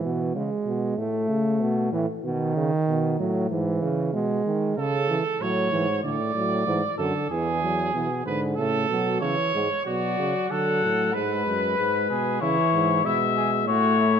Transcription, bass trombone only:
0, 0, Header, 1, 2, 480
1, 0, Start_track
1, 0, Key_signature, 3, "major"
1, 0, Tempo, 634249
1, 1697, Time_signature, 4, 2, 24, 8
1, 10745, End_track
2, 0, Start_track
2, 0, Title_t, "Bass trombone"
2, 0, Program_c, 0, 57
2, 30, Note_on_c, 0, 47, 66
2, 263, Note_off_c, 0, 47, 0
2, 269, Note_on_c, 0, 49, 53
2, 375, Note_off_c, 0, 49, 0
2, 499, Note_on_c, 0, 47, 60
2, 734, Note_off_c, 0, 47, 0
2, 740, Note_on_c, 0, 45, 59
2, 973, Note_off_c, 0, 45, 0
2, 977, Note_on_c, 0, 49, 58
2, 1214, Note_on_c, 0, 47, 65
2, 1225, Note_off_c, 0, 49, 0
2, 1450, Note_off_c, 0, 47, 0
2, 1455, Note_on_c, 0, 45, 64
2, 1563, Note_off_c, 0, 45, 0
2, 1696, Note_on_c, 0, 47, 69
2, 1932, Note_off_c, 0, 47, 0
2, 1941, Note_on_c, 0, 49, 68
2, 2048, Note_off_c, 0, 49, 0
2, 2184, Note_on_c, 0, 47, 55
2, 2414, Note_off_c, 0, 47, 0
2, 2420, Note_on_c, 0, 45, 67
2, 2651, Note_off_c, 0, 45, 0
2, 2657, Note_on_c, 0, 44, 63
2, 2886, Note_off_c, 0, 44, 0
2, 2890, Note_on_c, 0, 49, 65
2, 3133, Note_on_c, 0, 47, 59
2, 3144, Note_off_c, 0, 49, 0
2, 3369, Note_off_c, 0, 47, 0
2, 3373, Note_on_c, 0, 51, 58
2, 3609, Note_off_c, 0, 51, 0
2, 3613, Note_on_c, 0, 49, 64
2, 3919, Note_off_c, 0, 49, 0
2, 4087, Note_on_c, 0, 45, 59
2, 4313, Note_off_c, 0, 45, 0
2, 4328, Note_on_c, 0, 44, 63
2, 4565, Note_off_c, 0, 44, 0
2, 4570, Note_on_c, 0, 45, 60
2, 4804, Note_off_c, 0, 45, 0
2, 4809, Note_on_c, 0, 45, 61
2, 5043, Note_off_c, 0, 45, 0
2, 5048, Note_on_c, 0, 44, 64
2, 5157, Note_off_c, 0, 44, 0
2, 5286, Note_on_c, 0, 42, 57
2, 5396, Note_off_c, 0, 42, 0
2, 5526, Note_on_c, 0, 40, 62
2, 6001, Note_off_c, 0, 40, 0
2, 6010, Note_on_c, 0, 47, 56
2, 6244, Note_off_c, 0, 47, 0
2, 6249, Note_on_c, 0, 44, 64
2, 6484, Note_off_c, 0, 44, 0
2, 6489, Note_on_c, 0, 45, 66
2, 6725, Note_off_c, 0, 45, 0
2, 6730, Note_on_c, 0, 47, 58
2, 6967, Note_off_c, 0, 47, 0
2, 6972, Note_on_c, 0, 49, 63
2, 7082, Note_off_c, 0, 49, 0
2, 7220, Note_on_c, 0, 44, 54
2, 7330, Note_off_c, 0, 44, 0
2, 7467, Note_on_c, 0, 47, 55
2, 7692, Note_off_c, 0, 47, 0
2, 7712, Note_on_c, 0, 49, 56
2, 7821, Note_off_c, 0, 49, 0
2, 7952, Note_on_c, 0, 50, 50
2, 8197, Note_on_c, 0, 45, 55
2, 8209, Note_off_c, 0, 50, 0
2, 8436, Note_on_c, 0, 44, 61
2, 8447, Note_off_c, 0, 45, 0
2, 8674, Note_off_c, 0, 44, 0
2, 8678, Note_on_c, 0, 42, 58
2, 8913, Note_off_c, 0, 42, 0
2, 8920, Note_on_c, 0, 44, 58
2, 9152, Note_off_c, 0, 44, 0
2, 9157, Note_on_c, 0, 47, 54
2, 9392, Note_off_c, 0, 47, 0
2, 9398, Note_on_c, 0, 49, 58
2, 9506, Note_off_c, 0, 49, 0
2, 9635, Note_on_c, 0, 44, 63
2, 9870, Note_off_c, 0, 44, 0
2, 9875, Note_on_c, 0, 47, 60
2, 10346, Note_on_c, 0, 45, 63
2, 10357, Note_off_c, 0, 47, 0
2, 10745, Note_off_c, 0, 45, 0
2, 10745, End_track
0, 0, End_of_file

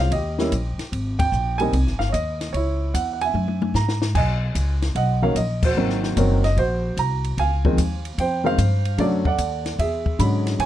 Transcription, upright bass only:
0, 0, Header, 1, 3, 480
1, 0, Start_track
1, 0, Tempo, 403226
1, 1099, Time_signature, 4, 2, 24, 8
1, 12686, End_track
2, 0, Start_track
2, 0, Title_t, "Upright bass"
2, 0, Program_c, 0, 32
2, 0, Note_on_c, 0, 36, 86
2, 121, Note_off_c, 0, 36, 0
2, 131, Note_on_c, 0, 39, 83
2, 600, Note_off_c, 0, 39, 0
2, 616, Note_on_c, 0, 34, 86
2, 915, Note_off_c, 0, 34, 0
2, 1096, Note_on_c, 0, 32, 78
2, 1563, Note_off_c, 0, 32, 0
2, 1571, Note_on_c, 0, 34, 84
2, 2041, Note_off_c, 0, 34, 0
2, 2056, Note_on_c, 0, 36, 83
2, 2217, Note_off_c, 0, 36, 0
2, 2217, Note_on_c, 0, 32, 52
2, 2365, Note_off_c, 0, 32, 0
2, 2372, Note_on_c, 0, 31, 61
2, 2524, Note_off_c, 0, 31, 0
2, 2539, Note_on_c, 0, 39, 89
2, 3005, Note_off_c, 0, 39, 0
2, 3021, Note_on_c, 0, 37, 74
2, 3486, Note_off_c, 0, 37, 0
2, 3502, Note_on_c, 0, 40, 83
2, 3967, Note_off_c, 0, 40, 0
2, 3973, Note_on_c, 0, 42, 76
2, 4442, Note_off_c, 0, 42, 0
2, 4453, Note_on_c, 0, 44, 86
2, 4922, Note_off_c, 0, 44, 0
2, 4940, Note_on_c, 0, 35, 77
2, 5405, Note_off_c, 0, 35, 0
2, 5416, Note_on_c, 0, 37, 83
2, 5883, Note_off_c, 0, 37, 0
2, 5893, Note_on_c, 0, 35, 79
2, 6361, Note_off_c, 0, 35, 0
2, 6374, Note_on_c, 0, 34, 83
2, 6836, Note_off_c, 0, 34, 0
2, 6843, Note_on_c, 0, 32, 82
2, 7316, Note_off_c, 0, 32, 0
2, 7339, Note_on_c, 0, 30, 89
2, 7804, Note_off_c, 0, 30, 0
2, 7816, Note_on_c, 0, 34, 80
2, 8282, Note_off_c, 0, 34, 0
2, 8294, Note_on_c, 0, 36, 87
2, 8761, Note_off_c, 0, 36, 0
2, 8778, Note_on_c, 0, 37, 82
2, 9242, Note_off_c, 0, 37, 0
2, 9256, Note_on_c, 0, 39, 86
2, 9721, Note_off_c, 0, 39, 0
2, 9735, Note_on_c, 0, 41, 78
2, 10201, Note_off_c, 0, 41, 0
2, 10214, Note_on_c, 0, 43, 86
2, 10680, Note_off_c, 0, 43, 0
2, 10689, Note_on_c, 0, 42, 80
2, 11157, Note_off_c, 0, 42, 0
2, 11169, Note_on_c, 0, 39, 86
2, 11637, Note_off_c, 0, 39, 0
2, 11648, Note_on_c, 0, 40, 82
2, 12116, Note_off_c, 0, 40, 0
2, 12132, Note_on_c, 0, 44, 92
2, 12598, Note_off_c, 0, 44, 0
2, 12607, Note_on_c, 0, 45, 75
2, 12686, Note_off_c, 0, 45, 0
2, 12686, End_track
3, 0, Start_track
3, 0, Title_t, "Muted upright bass strokes"
3, 930, Note_on_c, 9, 29, 41
3, 1049, Note_off_c, 9, 29, 0
3, 12686, End_track
0, 0, End_of_file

